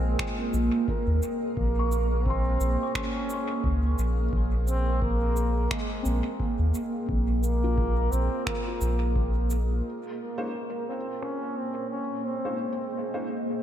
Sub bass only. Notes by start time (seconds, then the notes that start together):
Already playing: A#1
0.53 A#1
1.07 D#2
1.57 A#1
2.60 A#1
3.64 C#2
3.98 A#1
4.33 A#1
6.05 A#1
6.59 D#2
7.09 A#1
8.12 A#1
8.81 A#1